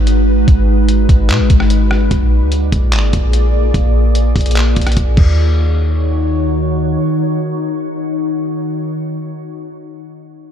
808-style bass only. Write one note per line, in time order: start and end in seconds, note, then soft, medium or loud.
0.00 0.46 G#1 loud
0.48 1.07 G#1 loud
1.09 1.31 G#1 loud
1.29 1.41 B2 medium
1.40 1.49 G#1 loud
1.50 2.09 G#1 loud
2.11 2.43 A#1 loud
2.42 2.71 D2 medium
2.72 2.94 A#1 loud
2.93 3.12 G#1 medium
3.13 3.72 A#1 loud
3.74 4.33 A#1 loud
4.36 4.75 A#1 loud
4.77 4.96 A#1 loud
4.97 5.16 A#1 loud
5.17 6.97 D#2 loud